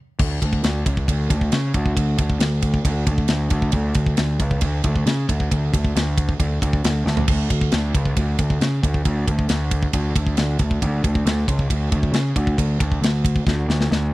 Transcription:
0.19 0.38 D2 loud
0.19 kick loud
0.19 crash loud
0.42 0.61 D2 medium
0.42 kick medium
0.42 ride medium
0.53 kick medium
0.64 0.83 D2 medium
0.64 snare loud
0.64 ride loud
0.86 1.05 C#2 loud
0.86 kick medium
0.86 ride medium
0.97 kick medium
1.08 1.27 D2 medium
1.08 kick loud
1.08 ride loud
1.30 1.49 D2 loud
1.30 kick medium
1.30 ride medium
1.41 kick medium
1.52 1.71 C#3 medium
1.52 snare loud
1.52 ride loud
1.74 1.93 D2 medium
1.74 kick medium
1.74 ride medium
1.86 kick medium
1.97 2.16 D2 loud
1.97 kick loud
1.97 ride loud
2.18 2.38 D2 medium
2.18 kick medium
2.18 ride medium
2.30 kick medium
2.39 2.78 D2 medium
2.39 snare loud
2.39 ride loud
2.62 kick medium
2.62 ride medium
2.74 kick medium
2.85 3.04 D2 loud
2.85 kick loud
2.85 ride loud
3.07 3.26 D2 loud
3.07 kick medium
3.07 ride medium
3.18 kick medium
3.28 3.48 D2 loud
3.28 snare loud
3.28 ride loud
3.50 3.70 D2 loud
3.50 kick medium
3.50 ride medium
3.62 kick medium
3.72 3.92 D2 loud
3.72 kick medium
3.72 ride loud
3.94 4.14 D2 loud
3.94 kick medium
3.94 ride medium
4.06 kick medium
4.17 4.37 D2 medium
4.17 snare loud
4.17 ride medium
4.40 4.59 C#2 loud
4.40 kick loud
4.40 ride medium
4.51 kick medium
4.61 4.80 D2 loud
4.61 kick loud
4.61 ride loud
4.84 5.03 D2 medium
4.84 kick medium
4.84 ride medium
4.96 kick medium
5.06 5.25 C#3 loud
5.06 snare loud
5.06 ride loud
5.29 5.48 D2 loud
5.29 kick medium
5.29 ride medium
5.40 kick medium
5.51 5.70 D2 medium
5.51 kick medium
5.51 ride loud
5.73 5.92 D2 medium
5.73 kick medium
5.73 ride medium
5.84 kick medium
5.95 6.33 D2 medium
5.95 snare loud
5.95 ride loud
6.18 kick medium
6.18 ride medium
6.29 kick medium
6.39 6.58 D2 medium
6.39 kick loud
6.39 ride loud
6.62 6.80 D2 loud
6.62 kick loud
6.62 ride medium
6.73 kick medium
6.84 7.02 D2 loud
6.84 snare loud
6.84 ride loud
7.06 7.24 D2 medium
7.06 snare medium
7.17 floor tom medium
7.28 7.47 D2 loud
7.28 kick loud
7.28 ride loud
7.28 crash medium
7.50 7.69 D2 medium
7.50 kick medium
7.50 ride medium
7.61 kick medium
7.72 7.91 D2 medium
7.72 snare loud
7.72 ride medium
7.94 8.13 C#2 loud
7.94 kick medium
7.94 ride medium
8.05 kick medium
8.17 8.35 D2 loud
8.17 kick loud
8.17 ride loud
8.39 8.57 D2 loud
8.39 kick medium
8.39 ride medium
8.50 kick medium
8.61 8.79 C#3 medium
8.61 snare loud
8.61 ride medium
8.83 9.02 D2 loud
8.83 kick medium
8.83 ride medium
8.94 kick medium
9.05 9.24 D2 loud
9.05 kick medium
9.05 ride loud
9.28 9.46 D2 medium
9.28 kick medium
9.28 ride medium
9.39 kick loud
9.49 9.87 D2 medium
9.49 snare loud
9.49 ride loud
9.71 kick loud
9.71 ride medium
9.83 kick medium
9.93 10.12 D2 loud
9.93 kick loud
9.93 ride loud
10.15 10.34 D2 loud
10.15 kick loud
10.15 ride medium
10.27 kick medium
10.37 10.56 D2 medium
10.37 snare loud
10.37 ride loud
10.59 10.78 D2 loud
10.59 kick medium
10.59 ride medium
10.71 kick medium
10.82 11.01 D2 loud
10.82 kick medium
10.82 ride loud
11.04 11.22 D2 loud
11.04 kick medium
11.04 ride medium
11.15 kick medium
11.25 11.44 D2 medium
11.25 snare loud
11.25 ride loud
11.48 11.67 C#2 loud
11.48 kick loud
11.48 ride medium
11.59 kick medium
11.70 11.89 D2 medium
11.70 kick loud
11.70 ride loud
11.92 12.10 D2 loud
11.92 kick medium
11.92 ride medium
12.03 kick medium
12.12 12.32 C#3 loud
12.12 snare loud
12.12 ride medium
12.36 12.55 D2 loud
12.36 kick medium
12.36 ride medium
12.47 kick medium
12.58 12.77 D2 medium
12.58 kick medium
12.58 ride loud
12.80 12.99 D2 loud
12.80 kick medium
12.80 ride medium
12.92 kick medium
13.01 13.39 D2 medium
13.01 snare loud
13.01 ride loud
13.25 kick loud
13.25 ride medium
13.36 kick medium
13.47 13.65 D2 medium
13.47 kick loud
13.47 snare medium
13.68 13.87 D2 medium
13.68 snare medium
13.81 snare medium
13.91 14.10 D2 medium
13.91 snare medium

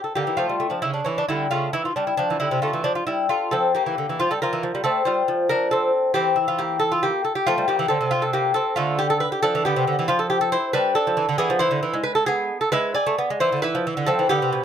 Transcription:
0.04 0.15 A4 medium
0.15 0.27 D3 medium
0.15 0.37 A#3 medium
0.15 0.37 G4 medium
0.27 0.38 E3 medium
0.37 0.49 F3 medium
0.37 0.59 A3 medium
0.37 0.69 F4 medium
0.49 0.60 G3 medium
0.60 0.71 A3 medium
0.70 0.82 F3 medium
0.70 0.82 D4 medium
0.82 1.00 C#3 medium
0.82 0.93 E4 medium
0.94 1.06 D4 medium
1.05 1.23 E3 medium
1.05 1.17 C#4 medium
1.18 1.28 D4 medium
1.28 1.46 D3 medium
1.28 1.51 G3 medium
1.28 1.50 E4 medium
1.51 1.68 C#3 medium
1.51 1.73 A3 medium
1.51 1.73 F4 medium
1.73 1.90 E3 medium
1.73 1.85 E4 medium
1.85 1.95 F4 medium
1.96 2.13 G3 medium
1.96 2.07 D4 medium
2.07 2.17 E4 medium
2.17 2.39 F3 medium
2.17 2.39 D4 medium
2.30 2.40 E3 medium
2.40 2.51 D3 medium
2.40 2.62 G3 soft
2.40 2.61 E4 medium
2.51 2.62 C3 medium
2.62 2.73 D3 medium
2.62 2.84 A3 medium
2.62 2.84 F4 medium
2.73 2.85 E3 medium
2.84 3.01 F3 medium
2.84 2.95 D4 medium
2.95 3.06 F4 medium
3.07 3.29 G3 medium
3.07 3.29 E4 medium
3.29 3.51 A3 medium
3.29 3.51 F4 medium
3.51 3.77 F3 medium
3.51 3.74 C4 medium
3.51 3.74 A4 medium
3.75 4.17 A#3 medium
3.75 4.18 G4 medium
3.86 3.97 E3 medium
3.98 4.09 D3 medium
4.09 4.20 E3 medium
4.20 4.31 F3 medium
4.20 4.31 F4 loud
4.31 4.42 G3 medium
4.31 4.41 A4 medium
4.42 4.53 F3 medium
4.42 4.82 F4 medium
4.42 4.83 A#4 loud
4.53 4.63 E3 medium
4.63 4.74 F3 medium
4.75 4.84 G3 medium
4.84 5.00 A3 medium
4.84 5.05 C4 medium
4.84 5.05 A4 loud
5.05 5.22 G3 medium
5.05 5.47 F4 medium
5.05 5.47 C5 medium
5.28 5.91 F3 medium
5.49 5.70 D4 medium
5.49 5.70 A#4 loud
5.71 6.13 C4 medium
5.71 6.13 A4 medium
6.14 7.10 E3 medium
6.14 6.36 C4 medium
6.14 6.36 G4 loud
6.36 6.47 E4 medium
6.48 6.59 F4 medium
6.58 6.80 A#3 medium
6.58 6.79 G4 loud
6.79 6.91 A4 loud
6.92 7.03 F4 medium
7.03 7.24 A#3 medium
7.03 7.24 G4 loud
7.25 7.35 A4 medium
7.35 7.46 G4 medium
7.47 7.57 F3 medium
7.47 7.67 A3 medium
7.47 7.67 F4 loud
7.58 7.68 G3 medium
7.68 7.79 F3 medium
7.68 7.88 A#3 medium
7.68 7.88 G4 medium
7.79 7.89 E3 medium
7.88 8.00 D3 medium
7.88 8.10 C4 medium
7.88 8.10 A4 medium
8.01 8.55 C3 medium
8.11 8.22 F4 loud
8.22 8.33 A4 medium
8.33 8.54 A#3 medium
8.33 8.54 G4 loud
8.54 8.76 C4 medium
8.54 8.75 A4 medium
8.76 9.25 D3 medium
8.76 8.97 A3 medium
8.76 8.97 F4 loud
8.99 9.10 G4 loud
9.10 9.20 A4 loud
9.20 9.32 B4 loud
9.32 9.42 G4 medium
9.42 9.53 F3 medium
9.42 9.63 D4 medium
9.42 9.64 A4 loud
9.55 9.65 E3 medium
9.65 9.76 D3 medium
9.65 10.06 B3 medium
9.65 10.06 G4 loud
9.76 9.86 C3 medium
9.87 9.97 D3 medium
9.99 10.08 E3 medium
10.08 10.56 F3 loud
10.08 10.19 F4 loud
10.19 10.29 A4 medium
10.30 10.40 G4 loud
10.41 10.52 A4 loud
10.52 10.73 E4 medium
10.52 10.73 C5 loud
10.73 10.97 G3 medium
10.73 10.94 D4 medium
10.73 10.94 B4 loud
10.95 11.36 D4 medium
10.95 11.36 A4 loud
11.07 11.17 F3 medium
11.17 11.27 E3 medium
11.29 11.38 D3 medium
11.38 11.49 E3 medium
11.38 11.59 B3 loud
11.38 11.59 G#4 loud
11.50 11.60 F3 medium
11.59 11.70 E3 loud
11.59 12.02 E4 medium
11.59 12.02 C5 loud
11.71 11.81 D3 medium
11.83 11.93 E3 medium
11.94 12.51 G#3 medium
12.03 12.15 B4 loud
12.15 12.26 A4 loud
12.26 12.59 B3 medium
12.26 12.59 G#4 loud
12.61 12.71 A4 medium
12.72 12.97 G#3 medium
12.72 12.94 E4 loud
12.72 12.94 B4 loud
12.94 13.38 G#4 medium
12.94 13.38 D5 loud
13.07 13.17 A3 medium
13.18 13.29 B3 medium
13.30 13.41 G#3 medium
13.40 13.51 E3 medium
13.40 13.62 E4 medium
13.40 13.62 C5 loud
13.52 13.63 D3 medium
13.62 13.74 E3 medium
13.62 14.05 E4 medium
13.62 14.05 B4 loud
13.75 13.85 F3 medium
13.87 13.97 E3 medium
13.97 14.07 D3 medium
14.06 14.18 F3 medium
14.06 14.28 C4 medium
14.06 14.28 A4 loud
14.19 14.29 E3 medium
14.29 14.41 D3 medium
14.29 14.65 B3 medium
14.29 14.65 G4 loud
14.42 14.52 C3 medium
14.53 14.63 B2 medium

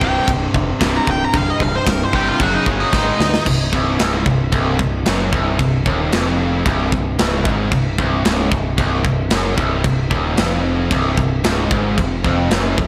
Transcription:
0.01 0.18 C1 medium
0.01 0.26 C2 loud
0.01 0.26 G2 loud
0.01 0.27 C3 loud
0.01 0.29 G5 loud
0.01 kick medium
0.27 0.45 C1 loud
0.27 0.51 C2 medium
0.27 0.51 G2 medium
0.27 kick loud
0.27 crash medium
0.54 0.72 F1 loud
0.54 0.78 C2 medium
0.54 0.78 G2 medium
0.54 kick loud
0.81 0.98 C1 loud
0.81 1.06 C2 medium
0.81 1.06 G2 medium
0.81 1.07 C3 loud
0.81 kick loud
0.81 snare loud
0.81 crash medium
0.96 1.08 A#5 loud
1.07 1.24 C1 loud
1.07 1.31 C2 medium
1.07 1.32 G2 medium
1.07 1.24 G5 loud
1.07 kick loud
1.24 1.36 A#5 medium
1.33 1.51 C1 medium
1.33 1.58 C2 medium
1.33 1.58 G2 medium
1.33 kick loud
1.33 crash medium
1.37 2.12 C3 medium
1.37 1.50 F5 loud
1.50 1.63 D#5 loud
1.60 1.77 C1 loud
1.60 1.84 C2 medium
1.60 1.85 G2 medium
1.60 1.75 F5 medium
1.60 kick medium
1.76 1.90 C5 loud
1.87 2.04 C1 medium
1.87 2.11 C2 medium
1.87 2.11 G2 medium
1.87 2.03 A#4 loud
1.87 kick loud
1.87 snare loud
1.87 crash medium
2.03 2.15 C5 loud
2.13 2.30 G1 medium
2.13 2.38 C2 loud
2.13 2.39 G2 loud
2.13 2.39 C3 loud
2.13 2.28 G4 loud
2.13 kick medium
2.28 2.41 F4 medium
2.40 2.57 F#1 medium
2.40 2.65 F#2 loud
2.40 2.65 C#3 medium
2.40 2.66 F#3 loud
2.40 2.55 F#4 loud
2.40 kick loud
2.40 crash medium
2.54 2.67 D#4 medium
2.66 2.84 G1 loud
2.66 2.92 F#2 medium
2.66 2.92 C#3 medium
2.66 2.92 F#3 loud
2.66 kick medium
2.80 2.92 D#4 medium
2.93 3.10 G#1 medium
2.93 3.18 G#2 medium
2.93 3.19 D#3 loud
2.93 3.19 G#3 loud
2.93 3.45 D#4 loud
2.93 kick loud
2.93 snare medium
3.19 3.37 D2 loud
3.19 3.44 G#2 medium
3.19 3.44 D#3 medium
3.19 snare loud
3.34 snare medium
3.46 3.71 C1 medium
3.46 3.67 C2 medium
3.46 kick medium
3.46 crash loud
3.46 crash medium
3.72 3.98 C1 loud
3.72 3.99 C2 loud
3.72 kick medium
3.99 4.25 C#1 medium
3.99 4.25 C#2 loud
3.99 snare loud
3.99 crash medium
4.26 4.51 C1 medium
4.26 4.48 C2 medium
4.26 kick loud
4.52 4.78 C1 medium
4.52 4.78 C2 loud
4.52 kick loud
4.52 crash medium
4.79 5.04 C1 medium
4.79 5.01 C2 medium
4.79 kick loud
5.06 5.32 F#1 medium
5.06 5.32 F#2 medium
5.06 snare loud
5.06 crash medium
5.33 5.58 C1 loud
5.33 5.59 C2 loud
5.33 kick loud
5.59 5.84 C1 medium
5.59 5.81 C2 medium
5.59 kick medium
5.59 crash medium
5.86 6.11 D#1 loud
5.86 6.12 D#2 loud
5.86 kick medium
6.12 6.62 F1 medium
6.12 6.65 F2 loud
6.12 snare loud
6.12 crash medium
6.65 6.91 C1 loud
6.65 6.91 C2 loud
6.65 kick loud
6.65 crash medium
6.92 7.17 C1 medium
6.92 7.13 C2 medium
6.92 kick loud
7.19 7.44 C#1 loud
7.19 7.45 C#2 loud
7.19 snare loud
7.19 crash medium
7.45 7.70 G#1 loud
7.45 7.71 G#2 loud
7.45 kick loud
7.71 7.97 C1 medium
7.71 7.93 C2 medium
7.71 kick medium
7.71 crash medium
7.98 8.23 C1 loud
7.98 8.24 C2 loud
7.98 kick medium
8.24 8.50 C#1 medium
8.24 8.51 C#2 loud
8.24 snare loud
8.24 crash medium
8.51 8.77 C1 medium
8.51 8.73 C2 medium
8.51 kick loud
8.78 9.03 C1 loud
8.78 9.04 C2 loud
8.78 kick loud
8.78 crash medium
9.05 9.30 C1 medium
9.05 9.27 C2 medium
9.05 kick medium
9.30 9.56 F#1 medium
9.30 9.57 F#2 medium
9.30 snare loud
9.30 crash medium
9.57 9.83 C1 loud
9.57 9.82 C2 loud
9.57 kick loud
9.83 10.10 C1 medium
9.83 10.06 C2 medium
9.83 kick loud
9.83 crash medium
10.10 10.36 D#1 loud
10.10 10.36 D#2 loud
10.10 kick medium
10.36 10.88 F1 loud
10.36 10.90 F2 loud
10.36 snare loud
10.36 crash medium
10.91 11.16 C1 medium
10.91 11.17 C2 loud
10.91 kick loud
10.91 crash medium
11.17 11.43 C1 medium
11.17 11.40 C2 medium
11.17 kick loud
11.44 11.70 C#1 medium
11.44 11.70 C#2 medium
11.44 snare loud
11.44 crash medium
11.71 11.96 G#1 medium
11.71 11.97 G#2 loud
11.71 kick loud
11.97 12.23 F1 medium
11.97 12.19 F2 medium
11.97 kick loud
11.97 crash medium
12.24 12.50 F1 medium
12.24 12.50 F2 loud
12.24 kick medium
12.51 12.77 F#1 medium
12.51 12.77 F#2 loud
12.51 snare loud
12.51 crash medium
12.77 12.87 F1 medium
12.77 12.87 F2 medium
12.77 kick medium

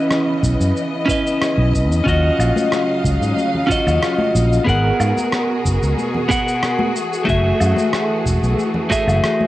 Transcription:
0.00 2.03 C#3 medium
0.00 2.02 E3 medium
0.00 2.03 B3 medium
0.00 1.03 C#4 medium
0.00 1.04 E4 medium
0.00 1.05 B4 medium
0.00 1.06 D#5 medium
0.00 4.63 D#5 medium
0.11 cross-stick medium
0.11 cabasa soft
0.43 0.55 B1 medium
0.43 kick medium
0.43 cabasa medium
0.60 0.71 F#2 medium
0.60 cabasa soft
0.77 cabasa soft
1.06 2.01 C#4 medium
1.06 2.02 E4 medium
1.06 2.03 B4 medium
1.06 kick loud
1.10 2.04 D#5 medium
1.10 cabasa medium
1.27 cabasa soft
1.41 cross-stick medium
1.41 cabasa soft
1.58 1.90 B1 medium
1.74 kick medium
1.74 cabasa medium
1.90 2.01 E2 medium
1.90 cabasa soft
2.04 2.29 D#2 medium
2.04 4.64 C#3 medium
2.04 4.64 F#3 medium
2.04 3.64 C#4 medium
2.04 3.65 F4 medium
2.04 3.66 F#4 medium
2.04 4.64 F5 medium
2.04 kick loud
2.08 3.67 D#5 medium
2.08 cabasa soft
2.39 2.50 A#1 medium
2.39 cabasa medium
2.39 low woodblock medium
2.56 high conga medium
2.56 cabasa soft
2.72 cross-stick medium
2.72 cabasa soft
3.04 3.16 C#2 medium
3.04 kick medium
3.04 cabasa medium
3.21 3.32 G#2 medium
3.21 cabasa soft
3.37 high conga medium
3.37 cabasa soft
3.54 low conga medium
3.67 4.62 C#4 medium
3.67 4.63 F4 medium
3.67 4.64 F#4 medium
3.67 kick medium
3.71 4.64 D#5 medium
3.71 cabasa medium
3.87 3.97 D#2 medium
3.87 cabasa soft
3.87 low woodblock medium
4.02 cross-stick medium
4.02 cabasa soft
4.18 high conga medium
4.35 4.58 A#1 loud
4.35 cabasa medium
4.53 cabasa soft
4.64 4.90 G#1 loud
4.64 6.93 B2 medium
4.64 6.25 B3 medium
4.64 9.47 F#4 medium
4.64 6.26 G#4 medium
4.64 9.47 G#4 medium
4.64 6.93 A#4 medium
4.64 6.27 A#4 medium
4.64 kick loud
4.69 6.27 F#5 medium
4.69 cabasa soft
5.00 5.11 G#2 medium
5.00 cabasa medium
5.00 low woodblock medium
5.17 high conga medium
5.17 cabasa soft
5.32 cross-stick loud
5.32 cabasa soft
5.65 5.77 F#1 medium
5.65 kick medium
5.65 cabasa medium
5.82 5.93 C#2 medium
5.82 cabasa soft
5.98 high conga medium
5.98 cabasa soft
6.14 low conga medium
6.29 6.93 B3 medium
6.29 6.93 G#4 medium
6.29 6.94 A#4 medium
6.29 6.94 F#5 medium
6.29 kick medium
6.29 cabasa medium
6.48 cabasa soft
6.63 cross-stick medium
6.63 cabasa soft
6.79 high conga medium
6.95 9.47 E3 medium
6.95 9.47 A3 medium
6.95 cabasa medium
7.13 cabasa soft
7.25 7.51 F#1 medium
7.25 8.86 A3 medium
7.25 8.87 F#4 medium
7.25 8.87 G#4 medium
7.25 kick loud
7.25 cabasa soft
7.30 8.88 E5 medium
7.60 7.72 F#2 medium
7.60 cabasa medium
7.60 low woodblock medium
7.76 high conga medium
7.76 cabasa soft
7.93 cross-stick medium
7.93 cabasa soft
8.26 8.37 E1 medium
8.26 kick medium
8.26 cabasa medium
8.43 8.53 B1 medium
8.43 cabasa soft
8.58 high conga medium
8.58 cabasa soft
8.74 low conga medium
8.90 9.47 A3 medium
8.90 9.47 F#4 medium
8.90 9.47 G#4 medium
8.90 9.47 E5 medium
8.90 kick medium
8.90 cabasa medium
9.07 9.18 F#1 loud
9.07 cabasa soft
9.07 low woodblock medium
9.24 cross-stick medium
9.24 cabasa soft
9.41 high conga medium

